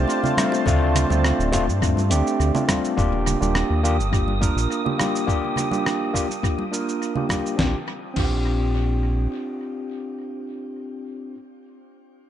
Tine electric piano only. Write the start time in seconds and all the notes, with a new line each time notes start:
Already playing: A3 C4 D4 G4
0.23 A3 C4 D4 F4
0.37 A3 C4 D4 F4
0.66 A3 C4 D4 F4
1.09 A3 C4 D4 F4
1.52 A3 C4 D4 F4
1.81 A3 C4 D4 F4
2.10 A3 C4 D4 G4
2.54 A3 C4 D4 F4
2.67 A3 C4 D4 F4
2.96 A#3 D4 F4 G4
3.40 A#3 D4 F4 G4
3.83 A#3 D4 F4 G4
4.11 A#3 D4 F4 G4
4.41 A#3 D4 F4 A#4
4.85 A#3 D4 F4 G4
4.98 A#3 D4 F4 G4
5.27 A#3 D4 F4 G4
5.71 A#3 D4 F4 G4
6.14 A#3 D4 F4 G4
6.42 A#3 D4 F4 G4
6.71 A#3 D4 F4 A#4
7.15 A#3 D4 F4 G4
7.29 A#3 D4 F4 G4
7.56 C4 D4 F4
7.61 G4
8.14 C4 D4 F4
8.19 G4